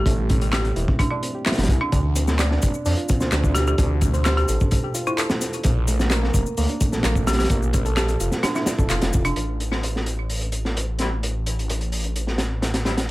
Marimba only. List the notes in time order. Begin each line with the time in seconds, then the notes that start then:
0.53 G4
0.99 D4
1.11 D4
1.81 D4
3.54 G4
3.68 G4
4.25 G4
4.37 G4
5.07 E4
7.27 G4
7.39 G4
7.97 G4
8.43 D4
8.56 D4
9.25 D4